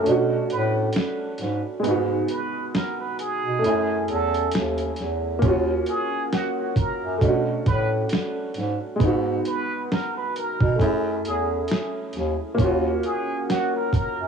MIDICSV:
0, 0, Header, 1, 5, 480
1, 0, Start_track
1, 0, Key_signature, -6, "minor"
1, 0, Tempo, 895522
1, 988, Time_signature, 4, 2, 24, 8
1, 7652, End_track
2, 0, Start_track
2, 0, Title_t, "Muted trumpet"
2, 0, Program_c, 0, 59
2, 278, Note_on_c, 0, 71, 77
2, 396, Note_off_c, 0, 71, 0
2, 1235, Note_on_c, 0, 71, 70
2, 1450, Note_off_c, 0, 71, 0
2, 1475, Note_on_c, 0, 70, 71
2, 1595, Note_off_c, 0, 70, 0
2, 1610, Note_on_c, 0, 71, 70
2, 1700, Note_off_c, 0, 71, 0
2, 1716, Note_on_c, 0, 68, 80
2, 2170, Note_off_c, 0, 68, 0
2, 2196, Note_on_c, 0, 69, 72
2, 2411, Note_off_c, 0, 69, 0
2, 3160, Note_on_c, 0, 68, 83
2, 3372, Note_off_c, 0, 68, 0
2, 3393, Note_on_c, 0, 66, 85
2, 3514, Note_off_c, 0, 66, 0
2, 3529, Note_on_c, 0, 66, 72
2, 3620, Note_off_c, 0, 66, 0
2, 3629, Note_on_c, 0, 70, 67
2, 3847, Note_off_c, 0, 70, 0
2, 4111, Note_on_c, 0, 71, 81
2, 4233, Note_off_c, 0, 71, 0
2, 5072, Note_on_c, 0, 71, 82
2, 5313, Note_on_c, 0, 70, 73
2, 5322, Note_off_c, 0, 71, 0
2, 5434, Note_off_c, 0, 70, 0
2, 5453, Note_on_c, 0, 71, 85
2, 5542, Note_off_c, 0, 71, 0
2, 5556, Note_on_c, 0, 70, 81
2, 5770, Note_off_c, 0, 70, 0
2, 6039, Note_on_c, 0, 68, 67
2, 6157, Note_off_c, 0, 68, 0
2, 6996, Note_on_c, 0, 68, 75
2, 7210, Note_off_c, 0, 68, 0
2, 7235, Note_on_c, 0, 66, 76
2, 7355, Note_off_c, 0, 66, 0
2, 7375, Note_on_c, 0, 70, 64
2, 7463, Note_off_c, 0, 70, 0
2, 7483, Note_on_c, 0, 70, 77
2, 7652, Note_off_c, 0, 70, 0
2, 7652, End_track
3, 0, Start_track
3, 0, Title_t, "Felt piano"
3, 0, Program_c, 1, 0
3, 0, Control_c, 1, 64, 127
3, 0, Note_on_c, 1, 57, 64
3, 18, Note_on_c, 1, 61, 55
3, 35, Control_c, 1, 64, 0
3, 37, Note_on_c, 1, 62, 57
3, 58, Note_on_c, 1, 66, 79
3, 145, Control_c, 1, 64, 127
3, 955, Note_off_c, 1, 57, 0
3, 962, Note_on_c, 1, 56, 75
3, 963, Note_off_c, 1, 61, 0
3, 973, Note_off_c, 1, 62, 0
3, 981, Note_on_c, 1, 59, 72
3, 984, Note_off_c, 1, 66, 0
3, 994, Control_c, 1, 64, 0
3, 1000, Note_on_c, 1, 63, 69
3, 1020, Note_on_c, 1, 66, 78
3, 1075, Control_c, 1, 64, 127
3, 1915, Note_off_c, 1, 56, 0
3, 1925, Note_off_c, 1, 59, 0
3, 1925, Note_on_c, 1, 57, 71
3, 1935, Note_off_c, 1, 63, 0
3, 1944, Note_on_c, 1, 61, 57
3, 1945, Note_off_c, 1, 66, 0
3, 1956, Control_c, 1, 64, 0
3, 1961, Note_on_c, 1, 64, 52
3, 1979, Note_on_c, 1, 80, 68
3, 2051, Control_c, 1, 64, 127
3, 2877, Note_off_c, 1, 57, 0
3, 2887, Note_off_c, 1, 61, 0
3, 2888, Note_on_c, 1, 58, 72
3, 2895, Note_off_c, 1, 64, 0
3, 2905, Note_off_c, 1, 80, 0
3, 2905, Note_on_c, 1, 61, 73
3, 2916, Control_c, 1, 64, 0
3, 2923, Note_on_c, 1, 65, 67
3, 2942, Note_on_c, 1, 66, 82
3, 3020, Control_c, 1, 64, 127
3, 3838, Note_off_c, 1, 58, 0
3, 3847, Note_off_c, 1, 61, 0
3, 3848, Note_on_c, 1, 57, 62
3, 3856, Note_off_c, 1, 65, 0
3, 3866, Note_off_c, 1, 66, 0
3, 3870, Note_on_c, 1, 61, 55
3, 3875, Control_c, 1, 64, 0
3, 3885, Note_on_c, 1, 62, 57
3, 3906, Note_on_c, 1, 66, 70
3, 3979, Control_c, 1, 64, 127
3, 4799, Note_off_c, 1, 57, 0
3, 4802, Note_on_c, 1, 56, 74
3, 4809, Note_off_c, 1, 61, 0
3, 4817, Note_off_c, 1, 62, 0
3, 4819, Note_on_c, 1, 59, 71
3, 4828, Note_off_c, 1, 66, 0
3, 4834, Control_c, 1, 64, 0
3, 4840, Note_on_c, 1, 63, 68
3, 4859, Note_on_c, 1, 66, 83
3, 4924, Control_c, 1, 64, 127
3, 5755, Note_off_c, 1, 56, 0
3, 5764, Note_off_c, 1, 59, 0
3, 5765, Note_on_c, 1, 57, 60
3, 5775, Note_off_c, 1, 63, 0
3, 5780, Note_on_c, 1, 61, 55
3, 5785, Note_off_c, 1, 66, 0
3, 5795, Control_c, 1, 64, 0
3, 5799, Note_on_c, 1, 64, 62
3, 5820, Note_on_c, 1, 68, 68
3, 5898, Control_c, 1, 64, 127
3, 6717, Note_off_c, 1, 57, 0
3, 6724, Note_on_c, 1, 58, 78
3, 6725, Note_off_c, 1, 61, 0
3, 6734, Note_off_c, 1, 64, 0
3, 6741, Note_on_c, 1, 61, 75
3, 6745, Note_off_c, 1, 68, 0
3, 6755, Control_c, 1, 64, 0
3, 6762, Note_on_c, 1, 65, 73
3, 6779, Note_on_c, 1, 66, 88
3, 6858, Control_c, 1, 64, 127
3, 7652, Note_off_c, 1, 58, 0
3, 7652, Note_off_c, 1, 61, 0
3, 7652, Note_off_c, 1, 65, 0
3, 7652, Note_off_c, 1, 66, 0
3, 7652, End_track
4, 0, Start_track
4, 0, Title_t, "Bass clarinet"
4, 0, Program_c, 2, 71
4, 35, Note_on_c, 2, 47, 99
4, 243, Note_off_c, 2, 47, 0
4, 278, Note_on_c, 2, 45, 98
4, 484, Note_off_c, 2, 45, 0
4, 756, Note_on_c, 2, 44, 92
4, 872, Note_off_c, 2, 44, 0
4, 996, Note_on_c, 2, 44, 106
4, 1203, Note_off_c, 2, 44, 0
4, 1854, Note_on_c, 2, 47, 77
4, 1940, Note_off_c, 2, 47, 0
4, 1953, Note_on_c, 2, 42, 95
4, 2162, Note_off_c, 2, 42, 0
4, 2194, Note_on_c, 2, 40, 102
4, 2402, Note_off_c, 2, 40, 0
4, 2433, Note_on_c, 2, 39, 85
4, 2641, Note_off_c, 2, 39, 0
4, 2674, Note_on_c, 2, 40, 86
4, 2882, Note_off_c, 2, 40, 0
4, 2908, Note_on_c, 2, 39, 109
4, 3119, Note_off_c, 2, 39, 0
4, 3772, Note_on_c, 2, 42, 82
4, 3859, Note_off_c, 2, 42, 0
4, 3870, Note_on_c, 2, 47, 98
4, 4080, Note_off_c, 2, 47, 0
4, 4110, Note_on_c, 2, 45, 93
4, 4320, Note_off_c, 2, 45, 0
4, 4593, Note_on_c, 2, 44, 92
4, 4711, Note_off_c, 2, 44, 0
4, 4830, Note_on_c, 2, 44, 101
4, 5040, Note_off_c, 2, 44, 0
4, 5688, Note_on_c, 2, 47, 89
4, 5777, Note_off_c, 2, 47, 0
4, 5791, Note_on_c, 2, 42, 108
4, 6000, Note_off_c, 2, 42, 0
4, 6034, Note_on_c, 2, 40, 91
4, 6242, Note_off_c, 2, 40, 0
4, 6513, Note_on_c, 2, 39, 99
4, 6631, Note_off_c, 2, 39, 0
4, 6751, Note_on_c, 2, 39, 108
4, 6960, Note_off_c, 2, 39, 0
4, 7610, Note_on_c, 2, 42, 84
4, 7652, Note_off_c, 2, 42, 0
4, 7652, End_track
5, 0, Start_track
5, 0, Title_t, "Drums"
5, 33, Note_on_c, 9, 42, 67
5, 86, Note_off_c, 9, 42, 0
5, 268, Note_on_c, 9, 42, 70
5, 322, Note_off_c, 9, 42, 0
5, 496, Note_on_c, 9, 42, 93
5, 516, Note_on_c, 9, 38, 121
5, 550, Note_off_c, 9, 42, 0
5, 570, Note_off_c, 9, 38, 0
5, 739, Note_on_c, 9, 42, 58
5, 760, Note_on_c, 9, 38, 37
5, 793, Note_off_c, 9, 42, 0
5, 814, Note_off_c, 9, 38, 0
5, 986, Note_on_c, 9, 42, 84
5, 1040, Note_off_c, 9, 42, 0
5, 1223, Note_on_c, 9, 42, 67
5, 1277, Note_off_c, 9, 42, 0
5, 1472, Note_on_c, 9, 38, 96
5, 1472, Note_on_c, 9, 42, 74
5, 1525, Note_off_c, 9, 42, 0
5, 1526, Note_off_c, 9, 38, 0
5, 1709, Note_on_c, 9, 42, 67
5, 1763, Note_off_c, 9, 42, 0
5, 1953, Note_on_c, 9, 42, 70
5, 2006, Note_off_c, 9, 42, 0
5, 2187, Note_on_c, 9, 42, 66
5, 2241, Note_off_c, 9, 42, 0
5, 2328, Note_on_c, 9, 42, 54
5, 2381, Note_off_c, 9, 42, 0
5, 2420, Note_on_c, 9, 42, 96
5, 2439, Note_on_c, 9, 38, 127
5, 2473, Note_off_c, 9, 42, 0
5, 2493, Note_off_c, 9, 38, 0
5, 2561, Note_on_c, 9, 42, 58
5, 2615, Note_off_c, 9, 42, 0
5, 2660, Note_on_c, 9, 42, 56
5, 2681, Note_on_c, 9, 38, 34
5, 2714, Note_off_c, 9, 42, 0
5, 2735, Note_off_c, 9, 38, 0
5, 2905, Note_on_c, 9, 36, 114
5, 2906, Note_on_c, 9, 42, 84
5, 2959, Note_off_c, 9, 36, 0
5, 2960, Note_off_c, 9, 42, 0
5, 3142, Note_on_c, 9, 42, 64
5, 3196, Note_off_c, 9, 42, 0
5, 3390, Note_on_c, 9, 42, 79
5, 3391, Note_on_c, 9, 38, 91
5, 3444, Note_off_c, 9, 42, 0
5, 3445, Note_off_c, 9, 38, 0
5, 3623, Note_on_c, 9, 36, 88
5, 3627, Note_on_c, 9, 42, 69
5, 3677, Note_off_c, 9, 36, 0
5, 3681, Note_off_c, 9, 42, 0
5, 3866, Note_on_c, 9, 36, 82
5, 3869, Note_on_c, 9, 42, 67
5, 3920, Note_off_c, 9, 36, 0
5, 3923, Note_off_c, 9, 42, 0
5, 4106, Note_on_c, 9, 42, 69
5, 4107, Note_on_c, 9, 36, 96
5, 4160, Note_off_c, 9, 36, 0
5, 4160, Note_off_c, 9, 42, 0
5, 4338, Note_on_c, 9, 42, 98
5, 4357, Note_on_c, 9, 38, 122
5, 4391, Note_off_c, 9, 42, 0
5, 4411, Note_off_c, 9, 38, 0
5, 4579, Note_on_c, 9, 42, 59
5, 4600, Note_on_c, 9, 38, 36
5, 4632, Note_off_c, 9, 42, 0
5, 4654, Note_off_c, 9, 38, 0
5, 4825, Note_on_c, 9, 36, 117
5, 4830, Note_on_c, 9, 42, 86
5, 4879, Note_off_c, 9, 36, 0
5, 4884, Note_off_c, 9, 42, 0
5, 5066, Note_on_c, 9, 42, 68
5, 5119, Note_off_c, 9, 42, 0
5, 5315, Note_on_c, 9, 42, 80
5, 5316, Note_on_c, 9, 38, 103
5, 5369, Note_off_c, 9, 38, 0
5, 5369, Note_off_c, 9, 42, 0
5, 5552, Note_on_c, 9, 42, 73
5, 5606, Note_off_c, 9, 42, 0
5, 5684, Note_on_c, 9, 36, 89
5, 5738, Note_off_c, 9, 36, 0
5, 5787, Note_on_c, 9, 36, 75
5, 5794, Note_on_c, 9, 42, 68
5, 5841, Note_off_c, 9, 36, 0
5, 5848, Note_off_c, 9, 42, 0
5, 6030, Note_on_c, 9, 42, 72
5, 6084, Note_off_c, 9, 42, 0
5, 6261, Note_on_c, 9, 42, 88
5, 6280, Note_on_c, 9, 38, 118
5, 6314, Note_off_c, 9, 42, 0
5, 6334, Note_off_c, 9, 38, 0
5, 6502, Note_on_c, 9, 42, 62
5, 6523, Note_on_c, 9, 38, 34
5, 6556, Note_off_c, 9, 42, 0
5, 6577, Note_off_c, 9, 38, 0
5, 6746, Note_on_c, 9, 36, 117
5, 6750, Note_on_c, 9, 42, 84
5, 6800, Note_off_c, 9, 36, 0
5, 6804, Note_off_c, 9, 42, 0
5, 6986, Note_on_c, 9, 42, 64
5, 7040, Note_off_c, 9, 42, 0
5, 7234, Note_on_c, 9, 42, 71
5, 7235, Note_on_c, 9, 38, 90
5, 7288, Note_off_c, 9, 42, 0
5, 7289, Note_off_c, 9, 38, 0
5, 7465, Note_on_c, 9, 36, 83
5, 7470, Note_on_c, 9, 42, 63
5, 7519, Note_off_c, 9, 36, 0
5, 7524, Note_off_c, 9, 42, 0
5, 7652, End_track
0, 0, End_of_file